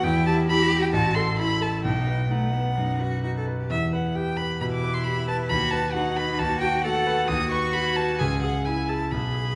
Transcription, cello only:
0.05 0.48 E4 loud
0.48 0.92 G4 loud
0.93 1.37 F#4 loud
1.38 1.83 E4 medium
1.85 2.25 D#4 medium
2.29 2.56 A3 medium
2.54 2.78 B3 medium
2.77 3.02 D#4 medium
3.01 3.23 F#4 medium
3.24 3.35 F#4 medium
3.37 3.45 A4 medium
3.59 3.70 G4 medium
4.61 5.51 E4 medium
5.49 5.94 F#4 loud
5.95 6.41 D#4 medium
6.40 6.86 F#4 loud
6.84 7.27 A4 loud
7.28 8.20 F#4 loud
8.19 8.65 G#4 loud
8.66 9.13 E4 medium
9.12 9.55 G#4 medium

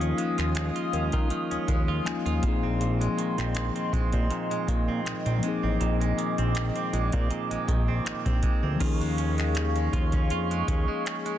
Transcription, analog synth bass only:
0.00 0.13 D#2 loud
0.39 0.71 D#2 medium
0.93 1.11 D#2 medium
1.13 1.28 D#3 loud
1.51 1.58 D#2 soft
1.68 2.01 D#2 medium
2.06 2.14 D#2 soft
2.26 2.41 D#2 medium
2.43 3.08 A#1 loud
3.38 3.71 A#1 medium
3.93 4.11 A#1 medium
4.13 4.28 A#2 loud
4.51 4.58 A#2 medium
4.68 5.01 A#2 medium
5.06 5.14 A#1 soft
5.26 5.41 A#1 medium
5.63 5.78 A1 medium
5.81 6.13 A#1 loud
6.38 6.71 A#1 medium
6.93 7.11 A#1 medium
7.13 7.28 A#2 loud
7.51 7.58 A#1 soft
7.68 8.01 A#1 medium
8.06 8.14 A#1 medium
8.26 8.41 A#1 medium
8.63 8.78 D2 medium
8.81 9.89 D#2 loud
9.93 10.32 D#2 medium
10.30 10.63 F2 medium
10.68 10.86 D#2 medium

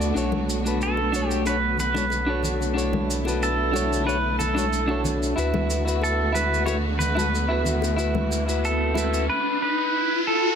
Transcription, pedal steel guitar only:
0.83 1.29 A4 medium
1.29 1.43 G4 medium
1.47 1.79 B4 medium
1.80 2.41 B4 medium
3.43 4.04 A4 medium
4.07 4.38 B4 medium
4.39 5.00 A4 medium
6.03 6.34 A4 medium
6.34 6.65 B4 medium
6.66 6.75 C#5 loud
6.99 7.61 B4 medium
8.65 9.29 A4 medium
9.29 9.61 B4 loud
9.62 10.23 B4 loud
10.27 10.55 A4 medium

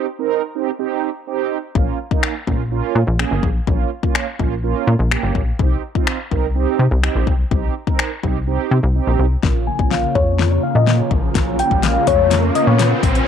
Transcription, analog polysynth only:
0.19 0.42 C4 medium
0.19 0.42 D#4 medium
0.19 0.42 A#4 loud
0.55 0.70 C4 medium
0.55 0.71 D#4 medium
0.55 0.71 G4 loud
0.79 1.10 C4 medium
0.79 1.10 D#4 medium
0.79 1.10 G4 loud
1.27 1.58 C4 medium
1.27 1.58 D#4 medium
1.27 1.58 G4 loud
1.75 1.98 A#3 medium
1.75 1.98 C#4 medium
1.75 1.98 F4 medium
2.11 2.34 A#3 medium
2.11 2.34 C#4 medium
2.11 2.34 D#4 loud
2.47 2.63 A#3 medium
2.47 2.63 C#4 medium
2.47 2.63 F4 loud
2.71 3.02 A#3 medium
2.71 3.02 C#4 medium
2.71 3.02 F4 loud
3.19 3.50 A#3 medium
3.19 3.50 C#4 medium
3.19 3.50 G#4 loud
3.67 3.90 A#3 medium
3.67 3.90 C#4 medium
3.67 3.90 F4 loud
4.03 4.26 A#3 medium
4.03 4.26 C#4 medium
4.03 4.26 F4 loud
4.39 4.54 A#3 medium
4.39 4.55 C#4 medium
4.39 4.55 F4 loud
4.63 4.94 A#3 medium
4.63 4.94 C#4 medium
4.63 4.94 F4 loud
5.11 5.42 A#3 medium
5.11 5.42 C#4 medium
5.11 5.42 G4 loud
5.59 5.82 C4 medium
5.59 5.82 D#4 medium
5.59 5.82 G4 loud
5.95 6.18 C4 medium
5.95 6.18 D#4 medium
5.95 6.18 F4 loud
6.31 6.46 C4 medium
6.31 6.47 D#4 medium
6.31 6.47 A#4 loud
6.55 6.86 C4 medium
6.55 6.86 D#4 medium
6.55 6.86 G4 loud
7.03 7.34 C4 medium
7.03 7.34 D#4 medium
7.03 7.34 G4 loud
7.51 7.74 C4 medium
7.51 7.74 D#4 medium
7.51 7.74 G4 medium
7.87 8.10 C4 medium
7.87 8.10 D#4 medium
7.87 8.10 A#4 loud
8.23 8.39 C4 medium
8.23 8.39 D#4 medium
8.23 8.39 G4 loud
8.47 8.78 C4 medium
8.47 8.78 D#4 medium
8.47 8.78 G4 loud
8.95 9.26 C4 medium
8.95 9.26 D#4 medium
8.95 9.26 G4 loud
9.43 9.66 A#3 medium
9.43 9.66 C#4 medium
9.43 9.66 F4 medium
9.79 10.40 A#3 medium
9.79 10.41 C#4 medium
9.79 10.41 F4 medium
10.87 11.18 A#3 medium
10.87 11.18 C#4 medium
10.87 11.18 F4 medium
11.35 11.58 A#3 medium
11.35 11.58 C#4 medium
11.35 11.58 F4 loud
11.71 12.09 A#3 medium
11.71 12.10 C#4 medium
11.71 12.10 F4 medium
12.31 12.92 A#3 medium
12.31 12.93 C#4 medium
12.31 12.93 F4 medium

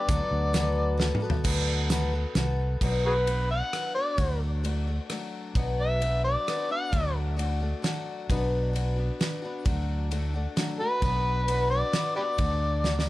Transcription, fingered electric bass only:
0.09 0.19 D2 loud
0.31 1.10 D2 medium
1.45 2.24 D2 medium
2.35 2.75 C2 medium
2.81 3.61 B1 medium
4.18 4.98 D2 medium
5.55 6.35 B1 medium
6.93 7.72 D2 medium
8.30 9.09 B1 medium
9.66 10.46 D2 medium
11.02 11.82 B1 medium
12.38 13.09 D2 medium

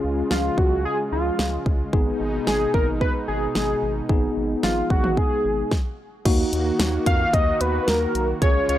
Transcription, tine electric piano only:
0.00 1.89 C#4 medium
0.00 1.89 F4 medium
0.00 1.89 G#4 medium
1.93 4.05 B3 medium
1.93 4.05 D#4 medium
1.93 4.05 G#4 medium
4.10 5.68 B3 medium
4.10 5.68 D#4 medium
4.10 5.68 G#4 medium
6.25 8.38 A#3 medium
6.25 8.38 D#4 medium
6.25 8.38 F#4 medium
8.42 8.78 C#4 medium
8.42 8.78 F4 medium
8.42 8.78 G#4 medium

